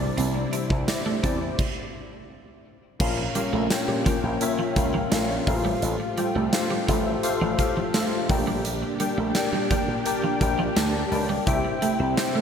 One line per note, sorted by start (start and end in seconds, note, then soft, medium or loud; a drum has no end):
0.00 0.84 C3 medium
0.00 1.57 C3 medium
0.00 1.57 G3 medium
0.00 1.55 D4 medium
0.00 0.43 E4 medium
0.00 1.57 E4 medium
0.00 0.43 G4 medium
0.00 0.43 C5 medium
0.00 0.44 D5 loud
0.17 0.44 C2 loud
0.17 0.32 C4 medium
0.17 closed hi-hat medium
0.35 muted clean electric guitar stroke soft
0.52 0.68 D4 medium
0.52 0.83 E4 medium
0.52 0.83 G4 medium
0.52 0.84 C5 medium
0.52 0.84 E5 medium
0.52 closed hi-hat medium
0.70 0.84 C2 loud
0.70 kick medium
0.88 1.19 E4 medium
0.88 1.19 G4 medium
0.88 1.19 C5 medium
0.88 1.19 D5 medium
0.88 muted clean electric guitar stroke soft
0.88 snare medium
0.88 closed hi-hat medium
0.88 tambourine medium
1.06 1.21 A3 medium
1.23 1.50 E2 medium
1.23 1.38 C4 medium
1.23 1.54 E4 medium
1.23 1.54 G4 medium
1.23 1.54 C5 medium
1.23 1.54 D5 loud
1.23 kick medium
1.23 closed hi-hat medium
1.59 kick loud
1.59 crash medium
2.99 3.26 A#1 loud
2.99 4.02 A#2 medium
2.99 5.44 A#3 medium
2.99 3.30 C#4 loud
2.99 5.45 C#4 medium
2.99 3.30 F4 loud
2.99 8.25 F4 medium
2.99 3.31 A#4 loud
2.99 3.31 C#5 loud
2.99 3.31 F5 loud
2.99 kick loud
2.99 crash loud
3.18 muted clean electric guitar stroke soft
3.35 3.50 G3 medium
3.35 3.66 C#4 medium
3.35 3.66 F4 medium
3.35 3.66 A#4 medium
3.35 3.66 C#5 medium
3.35 3.66 F5 medium
3.35 closed hi-hat medium
3.53 3.66 A#1 loud
3.53 3.68 A3 medium
3.70 4.01 C#4 medium
3.70 4.01 F4 medium
3.70 4.01 A#4 medium
3.70 4.01 C#5 medium
3.70 4.02 G5 loud
3.70 muted clean electric guitar stroke soft
3.70 snare loud
3.70 closed hi-hat medium
3.70 tambourine medium
3.88 4.01 A#2 medium
3.88 4.03 G3 medium
4.05 4.21 F3 medium
4.05 4.36 C#4 medium
4.05 4.36 F4 medium
4.05 4.37 A#4 medium
4.05 4.37 C#5 medium
4.05 4.37 G5 medium
4.05 kick medium
4.05 closed hi-hat medium
4.23 4.37 A#1 medium
4.41 4.72 C#4 loud
4.41 4.72 F4 loud
4.41 4.72 A#4 loud
4.41 4.72 C#5 loud
4.41 4.72 E5 loud
4.41 closed hi-hat medium
4.59 4.74 F3 medium
4.76 5.03 C#2 medium
4.76 5.07 C#4 medium
4.76 5.07 F4 medium
4.76 5.07 A#4 medium
4.76 5.07 C#5 medium
4.76 5.07 F5 medium
4.76 muted clean electric guitar stroke soft
4.76 kick medium
4.76 closed hi-hat medium
4.94 5.09 F3 medium
5.11 5.38 A#1 medium
5.11 5.26 A3 medium
5.11 5.42 C#4 medium
5.11 5.42 F4 medium
5.11 5.42 A#4 medium
5.11 5.43 C#5 medium
5.11 5.43 F5 medium
5.11 snare loud
5.11 closed hi-hat loud
5.11 tambourine medium
5.47 5.74 A1 loud
5.47 6.49 A2 medium
5.47 8.27 A3 medium
5.47 6.08 F4 loud
5.47 6.08 G4 medium
5.47 12.41 G4 loud
5.47 6.08 A4 medium
5.47 6.09 C5 medium
5.47 6.09 F5 loud
5.47 muted clean electric guitar stroke soft
5.47 kick loud
5.47 open hi-hat medium
5.65 5.79 G3 medium
5.82 5.96 A1 loud
5.82 closed hi-hat medium
6.00 muted clean electric guitar stroke soft
6.17 6.32 G3 medium
6.17 6.48 F4 medium
6.17 6.48 G4 medium
6.17 6.48 A4 medium
6.17 6.48 C5 medium
6.17 6.49 G5 loud
6.17 closed hi-hat medium
6.35 6.49 C2 medium
6.35 6.50 A3 medium
6.53 6.83 F4 medium
6.53 6.83 G4 medium
6.53 6.84 A4 medium
6.53 6.84 C5 medium
6.53 6.84 F5 medium
6.53 muted clean electric guitar stroke soft
6.53 snare loud
6.53 closed hi-hat medium
6.53 tambourine medium
6.70 6.85 G3 medium
6.88 7.15 A1 loud
6.88 7.03 F3 medium
6.88 7.19 F4 medium
6.88 7.19 G4 medium
6.88 7.19 A4 medium
6.88 7.19 C5 medium
6.88 7.19 E5 loud
6.88 kick medium
6.88 closed hi-hat medium
7.23 7.54 F4 loud
7.23 7.54 G4 loud
7.23 7.54 A4 loud
7.23 7.54 C5 loud
7.23 7.54 F5 loud
7.23 closed hi-hat medium
7.41 7.54 A1 loud
7.41 7.56 F3 medium
7.58 7.85 A2 loud
7.58 7.89 F4 medium
7.58 7.89 G4 medium
7.58 7.89 A4 medium
7.58 7.90 C5 medium
7.58 7.90 F5 loud
7.58 muted clean electric guitar stroke soft
7.58 kick medium
7.58 closed hi-hat medium
7.77 7.91 F3 medium
7.94 8.09 A3 medium
7.94 8.24 F4 medium
7.94 8.25 G4 medium
7.94 8.25 A4 medium
7.94 8.25 C5 medium
7.94 8.25 F5 medium
7.94 snare loud
7.94 closed hi-hat loud
7.94 tambourine medium
8.29 8.82 A#1 loud
8.29 9.31 A#2 medium
8.29 11.44 A#3 medium
8.29 8.90 D4 loud
8.29 11.44 D4 medium
8.29 8.90 G4 medium
8.29 8.91 A#4 medium
8.29 8.91 D5 medium
8.29 8.91 G5 loud
8.29 muted clean electric guitar stroke soft
8.29 kick loud
8.29 open hi-hat medium
8.47 8.62 G3 medium
8.65 closed hi-hat medium
8.83 muted clean electric guitar stroke soft
9.00 9.15 G3 medium
9.00 9.30 D4 medium
9.00 9.30 G4 medium
9.00 9.31 A#4 medium
9.00 9.31 D5 medium
9.00 9.31 G5 medium
9.00 closed hi-hat medium
9.18 9.31 A#1 loud
9.18 9.32 A3 medium
9.35 9.65 D4 medium
9.35 9.66 G4 medium
9.35 9.66 A#4 medium
9.35 9.66 D5 medium
9.35 9.66 G5 loud
9.35 muted slap bass stroke soft
9.35 muted clean electric guitar stroke soft
9.35 snare loud
9.35 closed hi-hat loud
9.35 tambourine medium
9.53 9.66 A#2 loud
9.53 9.68 G3 medium
9.70 9.85 F3 medium
9.70 10.01 D4 medium
9.70 10.01 G4 medium
9.70 10.01 A#4 medium
9.70 10.01 D5 medium
9.70 10.02 G5 loud
9.70 kick medium
9.70 closed hi-hat medium
9.88 10.01 A#2 medium
10.05 10.36 D4 loud
10.05 10.36 G4 loud
10.05 10.36 A#4 loud
10.05 10.37 D5 loud
10.05 10.37 G5 loud
10.05 closed hi-hat medium
10.24 10.38 F3 medium
10.40 10.68 A#1 loud
10.40 10.71 D4 medium
10.40 10.72 G4 medium
10.40 10.72 A#4 medium
10.40 10.72 D5 medium
10.40 10.72 G5 loud
10.40 muted clean electric guitar stroke soft
10.40 kick medium
10.40 closed hi-hat medium
10.59 10.74 F3 medium
10.76 11.03 D2 medium
10.76 10.91 A3 medium
10.76 11.07 D4 medium
10.76 11.07 G4 medium
10.76 11.07 A#4 medium
10.76 11.07 D5 medium
10.76 11.07 A5 medium
10.76 snare loud
10.76 closed hi-hat loud
10.76 tambourine medium
11.11 11.38 C#2 medium
11.11 11.42 D4 medium
11.11 11.42 G4 medium
11.11 11.42 A#4 medium
11.11 11.42 D5 medium
11.11 11.42 G5 loud
11.11 muted clean electric guitar stroke soft
11.11 open hi-hat medium
11.29 11.44 G3 medium
11.46 11.60 C2 loud
11.46 12.41 C3 medium
11.46 12.41 C4 medium
11.46 11.77 E4 loud
11.46 12.41 E4 medium
11.46 11.77 G4 loud
11.46 11.78 C5 loud
11.46 11.78 E5 loud
11.46 11.78 G5 loud
11.46 kick loud
11.46 closed hi-hat medium
11.65 muted clean electric guitar stroke soft
11.82 11.97 A3 medium
11.82 12.13 E4 medium
11.82 12.13 G4 medium
11.82 12.13 C5 medium
11.82 12.13 E5 medium
11.82 12.13 G5 loud
11.82 closed hi-hat medium
12.00 12.13 C2 medium
12.00 12.15 C4 medium
12.17 12.41 E4 medium
12.17 12.41 G4 medium
12.17 12.41 C5 medium
12.17 12.41 E5 medium
12.17 12.41 G5 medium
12.17 muted clean electric guitar stroke soft
12.17 snare loud
12.17 closed hi-hat medium
12.17 tambourine medium
12.35 12.41 A3 medium